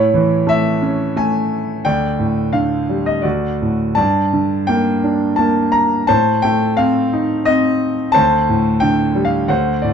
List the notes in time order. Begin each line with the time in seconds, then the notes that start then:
Already playing: A2 E4 C#5
0.14 E3
0.47 A3 E5
0.82 C#4
1.16 A3 G#5
1.85 D2 D5 G5
2.19 A2
2.53 D3 F5
2.89 G3
3.06 D#5
3.22 D2 F#4 D5
3.62 A2
3.95 G2 D5 A5
4.33 D3
4.67 A#3 G5
5.04 D4
5.36 A#3 A5
5.72 A#5
6.07 A2 C5 A5
6.42 A3 G5
6.77 C4 F5
7.13 D#4
7.45 C4 D#5
8.12 D2 C5 A5
8.49 A2
8.80 D3 G5
9.15 G3
9.25 F5
9.48 D2 C5 F#5
9.82 A2 D5